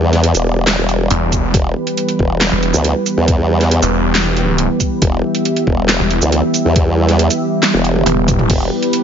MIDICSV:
0, 0, Header, 1, 5, 480
1, 0, Start_track
1, 0, Key_signature, 1, "minor"
1, 0, Tempo, 434783
1, 1700, Time_signature, 4, 2, 24, 8
1, 9972, End_track
2, 0, Start_track
2, 0, Title_t, "Analog synth pad"
2, 0, Program_c, 0, 89
2, 0, Note_on_c, 0, 52, 81
2, 0, Note_on_c, 0, 55, 74
2, 0, Note_on_c, 0, 59, 76
2, 0, Note_on_c, 0, 67, 74
2, 0, Note_on_c, 0, 74, 89
2, 1686, Note_off_c, 0, 74, 0
2, 1701, Note_on_c, 0, 71, 89
2, 5526, Note_off_c, 0, 71, 0
2, 5539, Note_on_c, 0, 76, 90
2, 9366, Note_off_c, 0, 76, 0
2, 9380, Note_on_c, 0, 71, 92
2, 9972, Note_off_c, 0, 52, 0
2, 9972, Note_off_c, 0, 55, 0
2, 9972, Note_off_c, 0, 59, 0
2, 9972, Note_off_c, 0, 67, 0
2, 9972, Note_off_c, 0, 71, 0
2, 9972, End_track
3, 0, Start_track
3, 0, Title_t, "Detuned saw bass"
3, 0, Program_c, 1, 39
3, 1220, Note_on_c, 1, 28, 101
3, 1682, Note_off_c, 1, 28, 0
3, 2782, Note_on_c, 1, 28, 96
3, 3003, Note_off_c, 1, 28, 0
3, 4223, Note_on_c, 1, 28, 101
3, 5163, Note_off_c, 1, 28, 0
3, 6623, Note_on_c, 1, 28, 101
3, 6843, Note_off_c, 1, 28, 0
3, 8900, Note_on_c, 1, 28, 98
3, 9362, Note_off_c, 1, 28, 0
3, 9972, End_track
4, 0, Start_track
4, 0, Title_t, "Wobble bass"
4, 0, Program_c, 2, 39
4, 0, Note_on_c, 2, 40, 99
4, 363, Note_off_c, 2, 40, 0
4, 382, Note_on_c, 2, 28, 95
4, 843, Note_off_c, 2, 28, 0
4, 862, Note_on_c, 2, 28, 100
4, 1201, Note_off_c, 2, 28, 0
4, 1700, Note_on_c, 2, 28, 98
4, 1922, Note_off_c, 2, 28, 0
4, 2420, Note_on_c, 2, 28, 98
4, 2763, Note_off_c, 2, 28, 0
4, 3022, Note_on_c, 2, 38, 97
4, 3243, Note_off_c, 2, 38, 0
4, 3502, Note_on_c, 2, 40, 101
4, 4203, Note_off_c, 2, 40, 0
4, 5540, Note_on_c, 2, 28, 98
4, 5762, Note_off_c, 2, 28, 0
4, 6260, Note_on_c, 2, 28, 99
4, 6603, Note_off_c, 2, 28, 0
4, 6863, Note_on_c, 2, 38, 98
4, 7083, Note_off_c, 2, 38, 0
4, 7343, Note_on_c, 2, 40, 99
4, 8043, Note_off_c, 2, 40, 0
4, 8543, Note_on_c, 2, 28, 99
4, 8882, Note_off_c, 2, 28, 0
4, 9381, Note_on_c, 2, 28, 98
4, 9602, Note_off_c, 2, 28, 0
4, 9972, End_track
5, 0, Start_track
5, 0, Title_t, "Drums"
5, 142, Note_on_c, 9, 38, 38
5, 142, Note_on_c, 9, 42, 50
5, 253, Note_off_c, 9, 38, 0
5, 253, Note_off_c, 9, 42, 0
5, 260, Note_on_c, 9, 42, 78
5, 370, Note_off_c, 9, 42, 0
5, 382, Note_on_c, 9, 42, 51
5, 382, Note_on_c, 9, 82, 58
5, 493, Note_off_c, 9, 42, 0
5, 493, Note_off_c, 9, 82, 0
5, 740, Note_on_c, 9, 38, 124
5, 740, Note_on_c, 9, 39, 90
5, 740, Note_on_c, 9, 42, 78
5, 850, Note_off_c, 9, 38, 0
5, 850, Note_off_c, 9, 39, 0
5, 850, Note_off_c, 9, 42, 0
5, 980, Note_on_c, 9, 42, 49
5, 1090, Note_off_c, 9, 42, 0
5, 1220, Note_on_c, 9, 42, 78
5, 1330, Note_off_c, 9, 42, 0
5, 1460, Note_on_c, 9, 36, 69
5, 1460, Note_on_c, 9, 42, 51
5, 1460, Note_on_c, 9, 82, 52
5, 1570, Note_off_c, 9, 42, 0
5, 1570, Note_off_c, 9, 82, 0
5, 1571, Note_off_c, 9, 36, 0
5, 1700, Note_on_c, 9, 36, 124
5, 1700, Note_on_c, 9, 42, 79
5, 1810, Note_off_c, 9, 42, 0
5, 1811, Note_off_c, 9, 36, 0
5, 2063, Note_on_c, 9, 42, 52
5, 2173, Note_off_c, 9, 42, 0
5, 2180, Note_on_c, 9, 42, 77
5, 2290, Note_off_c, 9, 42, 0
5, 2303, Note_on_c, 9, 42, 50
5, 2413, Note_off_c, 9, 42, 0
5, 2420, Note_on_c, 9, 36, 65
5, 2531, Note_off_c, 9, 36, 0
5, 2660, Note_on_c, 9, 38, 123
5, 2660, Note_on_c, 9, 39, 87
5, 2660, Note_on_c, 9, 42, 78
5, 2770, Note_off_c, 9, 38, 0
5, 2770, Note_off_c, 9, 39, 0
5, 2770, Note_off_c, 9, 42, 0
5, 2900, Note_on_c, 9, 42, 50
5, 3011, Note_off_c, 9, 42, 0
5, 3023, Note_on_c, 9, 82, 64
5, 3133, Note_off_c, 9, 82, 0
5, 3140, Note_on_c, 9, 42, 77
5, 3251, Note_off_c, 9, 42, 0
5, 3380, Note_on_c, 9, 42, 51
5, 3380, Note_on_c, 9, 82, 54
5, 3491, Note_off_c, 9, 42, 0
5, 3491, Note_off_c, 9, 82, 0
5, 3620, Note_on_c, 9, 36, 116
5, 3620, Note_on_c, 9, 42, 81
5, 3731, Note_off_c, 9, 36, 0
5, 3731, Note_off_c, 9, 42, 0
5, 3982, Note_on_c, 9, 38, 36
5, 3982, Note_on_c, 9, 42, 53
5, 4093, Note_off_c, 9, 38, 0
5, 4093, Note_off_c, 9, 42, 0
5, 4100, Note_on_c, 9, 42, 78
5, 4211, Note_off_c, 9, 42, 0
5, 4222, Note_on_c, 9, 42, 53
5, 4222, Note_on_c, 9, 82, 64
5, 4333, Note_off_c, 9, 42, 0
5, 4333, Note_off_c, 9, 82, 0
5, 4580, Note_on_c, 9, 38, 118
5, 4580, Note_on_c, 9, 39, 86
5, 4580, Note_on_c, 9, 42, 81
5, 4691, Note_off_c, 9, 38, 0
5, 4691, Note_off_c, 9, 39, 0
5, 4691, Note_off_c, 9, 42, 0
5, 4820, Note_on_c, 9, 42, 50
5, 4931, Note_off_c, 9, 42, 0
5, 5060, Note_on_c, 9, 42, 79
5, 5171, Note_off_c, 9, 42, 0
5, 5300, Note_on_c, 9, 36, 64
5, 5300, Note_on_c, 9, 42, 52
5, 5300, Note_on_c, 9, 82, 57
5, 5411, Note_off_c, 9, 36, 0
5, 5411, Note_off_c, 9, 42, 0
5, 5411, Note_off_c, 9, 82, 0
5, 5540, Note_on_c, 9, 36, 120
5, 5540, Note_on_c, 9, 42, 85
5, 5651, Note_off_c, 9, 36, 0
5, 5651, Note_off_c, 9, 42, 0
5, 5903, Note_on_c, 9, 42, 56
5, 6013, Note_off_c, 9, 42, 0
5, 6021, Note_on_c, 9, 42, 82
5, 6131, Note_off_c, 9, 42, 0
5, 6143, Note_on_c, 9, 42, 53
5, 6253, Note_off_c, 9, 42, 0
5, 6261, Note_on_c, 9, 36, 61
5, 6371, Note_off_c, 9, 36, 0
5, 6500, Note_on_c, 9, 38, 115
5, 6500, Note_on_c, 9, 39, 91
5, 6500, Note_on_c, 9, 42, 84
5, 6611, Note_off_c, 9, 38, 0
5, 6611, Note_off_c, 9, 39, 0
5, 6611, Note_off_c, 9, 42, 0
5, 6741, Note_on_c, 9, 42, 53
5, 6851, Note_off_c, 9, 42, 0
5, 6863, Note_on_c, 9, 82, 66
5, 6974, Note_off_c, 9, 82, 0
5, 6980, Note_on_c, 9, 42, 85
5, 7091, Note_off_c, 9, 42, 0
5, 7221, Note_on_c, 9, 42, 55
5, 7221, Note_on_c, 9, 82, 55
5, 7331, Note_off_c, 9, 42, 0
5, 7331, Note_off_c, 9, 82, 0
5, 7460, Note_on_c, 9, 42, 85
5, 7461, Note_on_c, 9, 36, 116
5, 7571, Note_off_c, 9, 36, 0
5, 7571, Note_off_c, 9, 42, 0
5, 7823, Note_on_c, 9, 38, 36
5, 7823, Note_on_c, 9, 42, 57
5, 7933, Note_off_c, 9, 38, 0
5, 7933, Note_off_c, 9, 42, 0
5, 7941, Note_on_c, 9, 42, 83
5, 8051, Note_off_c, 9, 42, 0
5, 8063, Note_on_c, 9, 42, 56
5, 8063, Note_on_c, 9, 82, 64
5, 8173, Note_off_c, 9, 42, 0
5, 8173, Note_off_c, 9, 82, 0
5, 8421, Note_on_c, 9, 38, 118
5, 8421, Note_on_c, 9, 39, 92
5, 8421, Note_on_c, 9, 42, 85
5, 8421, Note_on_c, 9, 48, 63
5, 8531, Note_off_c, 9, 38, 0
5, 8531, Note_off_c, 9, 39, 0
5, 8531, Note_off_c, 9, 42, 0
5, 8531, Note_off_c, 9, 48, 0
5, 8543, Note_on_c, 9, 48, 58
5, 8653, Note_off_c, 9, 48, 0
5, 8661, Note_on_c, 9, 42, 55
5, 8771, Note_off_c, 9, 42, 0
5, 8783, Note_on_c, 9, 47, 68
5, 8893, Note_off_c, 9, 47, 0
5, 8901, Note_on_c, 9, 42, 87
5, 8901, Note_on_c, 9, 47, 90
5, 9011, Note_off_c, 9, 42, 0
5, 9011, Note_off_c, 9, 47, 0
5, 9141, Note_on_c, 9, 36, 64
5, 9141, Note_on_c, 9, 42, 56
5, 9141, Note_on_c, 9, 45, 100
5, 9141, Note_on_c, 9, 82, 55
5, 9251, Note_off_c, 9, 36, 0
5, 9251, Note_off_c, 9, 42, 0
5, 9251, Note_off_c, 9, 45, 0
5, 9251, Note_off_c, 9, 82, 0
5, 9263, Note_on_c, 9, 45, 89
5, 9373, Note_off_c, 9, 45, 0
5, 9381, Note_on_c, 9, 36, 121
5, 9381, Note_on_c, 9, 42, 87
5, 9381, Note_on_c, 9, 49, 79
5, 9491, Note_off_c, 9, 36, 0
5, 9491, Note_off_c, 9, 42, 0
5, 9491, Note_off_c, 9, 49, 0
5, 9743, Note_on_c, 9, 42, 57
5, 9853, Note_off_c, 9, 42, 0
5, 9860, Note_on_c, 9, 42, 84
5, 9971, Note_off_c, 9, 42, 0
5, 9972, End_track
0, 0, End_of_file